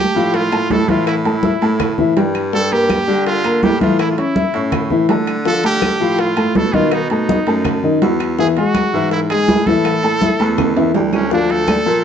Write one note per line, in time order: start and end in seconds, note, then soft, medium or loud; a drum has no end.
0.00 0.37 G4 loud
0.15 0.66 A2 medium
0.15 0.46 F3 medium
0.15 0.46 F4 medium
0.15 0.46 F5 medium
0.15 high bongo soft
0.15 high conga soft
0.34 0.73 F4 loud
0.34 high bongo medium
0.34 high conga soft
0.34 high timbale medium
0.52 0.82 A3 medium
0.52 0.82 A4 medium
0.52 0.83 A5 medium
0.52 high bongo soft
0.52 high conga soft
0.52 high timbale medium
0.52 claves medium
0.70 1.56 A2 medium
0.70 0.91 A4 loud
0.70 high bongo soft
0.70 low bongo medium
0.70 high conga medium
0.70 low timbale medium
0.88 1.19 E3 medium
0.88 1.19 E4 medium
0.88 1.07 F4 medium
0.88 1.19 E5 medium
0.88 high conga medium
0.88 high timbale medium
1.07 1.15 E4 medium
1.07 high bongo medium
1.07 high conga soft
1.07 high timbale medium
1.07 claves medium
1.25 1.40 A3 medium
1.25 1.95 E4 medium
1.25 1.40 A4 medium
1.25 1.41 A5 medium
1.25 high bongo soft
1.25 high conga soft
1.25 high timbale medium
1.43 1.59 E4 medium
1.43 1.59 E5 medium
1.43 1.59 E6 medium
1.43 high bongo medium
1.43 high conga medium
1.43 low timbale medium
1.61 2.12 A2 medium
1.61 1.92 A3 medium
1.61 1.92 A4 medium
1.61 1.92 A5 medium
1.61 high bongo soft
1.61 high conga soft
1.61 high timbale medium
1.80 high bongo medium
1.80 high conga soft
1.80 low conga medium
1.80 high timbale medium
1.80 claves medium
1.98 2.13 E3 medium
1.98 2.14 E4 medium
1.98 2.14 E5 medium
1.98 high bongo soft
1.98 high conga soft
1.98 low conga medium
2.16 3.02 G2 medium
2.16 2.46 G3 medium
2.16 2.47 G4 medium
2.16 2.47 G5 medium
2.16 high bongo soft
2.16 low bongo medium
2.16 high conga soft
2.16 high timbale medium
2.16 low timbale medium
2.35 high conga soft
2.35 high timbale medium
2.35 claves medium
2.53 2.68 G3 medium
2.53 2.68 G4 medium
2.53 2.74 A4 loud
2.53 2.69 G5 medium
2.53 high bongo medium
2.53 high conga soft
2.71 3.01 A#3 medium
2.71 3.26 G4 loud
2.71 3.02 A#4 medium
2.71 3.02 A#5 medium
2.71 high bongo soft
2.71 high conga soft
2.71 high timbale medium
2.89 high bongo medium
2.89 high conga medium
2.89 high timbale medium
2.89 low timbale medium
2.89 claves medium
3.08 3.59 D3 medium
3.08 3.38 G3 medium
3.08 3.38 G4 medium
3.08 3.38 G5 medium
3.08 high bongo soft
3.08 high conga soft
3.26 3.65 F4 loud
3.26 high bongo medium
3.26 high conga soft
3.26 high timbale medium
3.44 3.74 A#3 medium
3.44 3.75 A#4 medium
3.44 3.75 A#5 medium
3.44 high bongo soft
3.44 high conga soft
3.44 high timbale medium
3.44 claves medium
3.63 4.21 A2 medium
3.63 3.81 G4 loud
3.63 high bongo soft
3.63 low bongo medium
3.63 high conga medium
3.63 low timbale medium
3.81 4.11 E3 medium
3.81 4.11 E4 medium
3.81 3.98 F4 medium
3.81 4.12 E5 medium
3.81 high conga medium
3.81 high timbale medium
3.99 4.10 E4 medium
3.99 high bongo medium
3.99 high timbale medium
3.99 claves medium
4.11 4.20 F4 medium
4.18 4.33 C#4 medium
4.18 4.91 E4 medium
4.18 4.33 C#5 medium
4.18 4.33 C#6 medium
4.18 high bongo soft
4.18 high conga soft
4.18 high timbale medium
4.36 4.51 E4 medium
4.36 4.51 E5 medium
4.36 4.51 E6 medium
4.36 high bongo medium
4.36 high conga medium
4.36 low timbale medium
4.54 5.05 A2 medium
4.54 4.84 C#4 medium
4.54 4.85 C#5 medium
4.54 4.85 C#6 medium
4.54 high bongo soft
4.54 high conga soft
4.54 high timbale medium
4.72 high bongo medium
4.72 high conga soft
4.72 low conga medium
4.72 high timbale medium
4.72 claves medium
4.90 5.06 E3 medium
4.90 5.06 E4 medium
4.90 5.06 E5 medium
4.90 high bongo soft
4.90 high conga soft
4.90 low conga medium
5.09 5.95 D3 medium
5.09 5.39 A3 medium
5.09 5.40 A4 medium
5.09 5.40 A5 medium
5.09 high bongo soft
5.09 low bongo medium
5.09 high conga soft
5.09 high timbale medium
5.09 low timbale medium
5.27 high conga soft
5.27 high timbale medium
5.27 claves medium
5.45 5.61 F3 medium
5.45 5.61 F4 medium
5.45 5.63 A4 loud
5.45 5.61 F5 medium
5.45 high bongo medium
5.45 high conga soft
5.64 5.94 A3 medium
5.64 6.21 G4 loud
5.64 5.94 A4 medium
5.64 5.94 A5 medium
5.64 high conga soft
5.64 high timbale medium
5.82 high bongo medium
5.82 high conga loud
5.82 high timbale medium
5.82 low timbale medium
5.82 claves medium
6.00 6.51 A2 medium
6.00 6.30 F3 medium
6.00 6.31 F4 medium
6.00 6.31 F5 medium
6.00 high conga soft
6.18 6.58 F4 loud
6.18 high bongo medium
6.18 high conga soft
6.18 high timbale medium
6.37 6.67 A3 medium
6.37 6.67 A4 medium
6.37 6.67 A5 medium
6.37 high bongo soft
6.37 high conga soft
6.37 high timbale loud
6.37 claves medium
6.55 7.41 B2 medium
6.55 6.76 A4 loud
6.55 high bongo soft
6.55 low bongo medium
6.55 high conga medium
6.55 low timbale medium
6.74 7.04 D#3 medium
6.74 7.04 D#4 medium
6.74 6.94 F4 medium
6.74 7.04 D#5 medium
6.74 high conga medium
6.74 high timbale medium
6.91 7.10 D#4 loud
6.91 high bongo medium
6.91 high conga soft
6.91 high timbale medium
6.91 claves medium
7.10 7.26 A3 medium
7.10 7.80 D#4 medium
7.10 7.26 A4 medium
7.10 7.26 A5 medium
7.10 high bongo soft
7.10 high conga soft
7.10 high timbale medium
7.29 7.44 D#4 medium
7.29 7.44 D#5 medium
7.29 7.44 D#6 medium
7.29 high bongo medium
7.29 high conga loud
7.29 low timbale medium
7.47 7.98 F#2 medium
7.47 7.77 A3 medium
7.47 7.77 A4 medium
7.47 7.77 A5 medium
7.47 high bongo soft
7.47 high conga soft
7.47 high timbale medium
7.65 high bongo medium
7.65 high conga soft
7.65 low conga medium
7.65 high timbale medium
7.65 claves medium
7.83 7.98 D#3 medium
7.83 7.99 D#4 medium
7.83 7.99 D#5 medium
7.83 high bongo soft
7.83 high conga soft
8.02 8.60 E2 medium
8.02 8.32 F#3 medium
8.02 8.32 F#4 medium
8.02 8.32 F#5 medium
8.02 high bongo soft
8.02 low bongo medium
8.02 high conga soft
8.02 high timbale medium
8.02 low timbale medium
8.20 high conga soft
8.20 high timbale medium
8.20 claves medium
8.38 8.54 E3 medium
8.38 8.54 E4 medium
8.38 8.47 G#4 medium
8.38 8.54 E5 medium
8.38 high bongo medium
8.38 high conga soft
8.57 8.87 G#3 medium
8.57 9.08 F#4 loud
8.57 8.87 G#4 medium
8.57 8.87 G#5 medium
8.57 high bongo soft
8.57 high conga soft
8.57 high timbale medium
8.75 high bongo medium
8.75 high conga medium
8.75 high timbale medium
8.75 low timbale medium
8.75 claves medium
8.93 9.44 G#2 medium
8.93 9.24 E3 medium
8.93 9.24 E4 medium
8.93 9.24 E5 medium
8.93 high bongo soft
8.93 high conga soft
9.11 9.20 E4 medium
9.11 high bongo medium
9.11 high conga soft
9.11 high timbale medium
9.30 9.60 G#3 medium
9.30 9.68 G#4 loud
9.30 9.61 G#4 medium
9.30 9.61 G#5 medium
9.30 high bongo soft
9.30 high conga soft
9.30 high timbale medium
9.30 claves medium
9.48 10.34 A2 medium
9.48 high bongo soft
9.48 low bongo medium
9.48 high conga medium
9.48 low timbale medium
9.67 9.97 E3 medium
9.67 9.97 E4 medium
9.67 10.95 A4 loud
9.67 9.97 E5 medium
9.67 high conga medium
9.67 high timbale medium
9.85 high bongo medium
9.85 high conga soft
9.85 high timbale medium
9.85 claves medium
10.03 10.18 A3 medium
10.03 10.19 A4 medium
10.03 10.19 A5 medium
10.03 high bongo soft
10.03 high conga soft
10.03 high timbale medium
10.22 10.37 E4 medium
10.22 10.37 E5 medium
10.22 10.37 E6 medium
10.22 high bongo medium
10.22 high conga medium
10.22 low timbale medium
10.40 10.91 E2 loud
10.40 10.70 A3 medium
10.40 10.70 A4 medium
10.40 10.70 A5 medium
10.40 high bongo soft
10.40 high conga soft
10.40 high timbale medium
10.58 high bongo medium
10.58 high conga soft
10.58 low conga medium
10.58 high timbale medium
10.58 claves medium
10.77 10.92 E3 medium
10.77 10.92 E4 medium
10.77 10.92 E5 medium
10.77 high bongo soft
10.77 high conga soft
10.77 high timbale medium
10.94 11.80 D2 medium
10.94 11.25 G3 medium
10.94 11.25 G4 medium
10.94 11.25 G5 medium
10.94 high bongo soft
10.94 low bongo medium
10.94 high conga soft
10.94 low timbale loud
11.13 11.31 C#4 medium
11.13 high conga soft
11.13 low timbale medium
11.13 claves medium
11.31 11.62 F3 medium
11.31 11.53 D4 loud
11.31 11.62 F4 medium
11.31 11.62 F5 medium
11.31 high bongo medium
11.31 high conga soft
11.49 12.04 A4 loud
11.49 high bongo soft
11.49 high conga soft
11.49 high timbale medium
11.68 11.83 A3 medium
11.68 11.83 A4 medium
11.68 11.83 D5 medium
11.68 high bongo medium
11.68 high conga medium
11.68 high timbale medium
11.68 low timbale medium
11.68 claves medium
11.86 12.04 A#2 medium
11.86 12.04 F3 medium
11.86 12.04 A4 medium
11.86 12.04 A#4 medium
11.86 high bongo soft
11.86 high conga soft